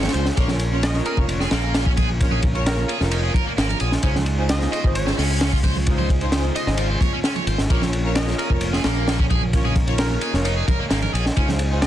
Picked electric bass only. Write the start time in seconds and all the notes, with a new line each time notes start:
0.14 C#2
0.37 A#1
1.17 F1
1.52 A#1
3.01 F1
3.47 muted picked electric bass stroke
3.58 G#1
3.81 A#1
4.03 C#2
4.84 G#1
5.18 C#2
6.67 G#1
7.47 G#1
7.59 G#1
7.70 A#1
8.50 F1
8.85 A#1
10.34 F1
10.80 muted picked electric bass stroke
10.91 G#1
11.14 A#1
11.37 C#2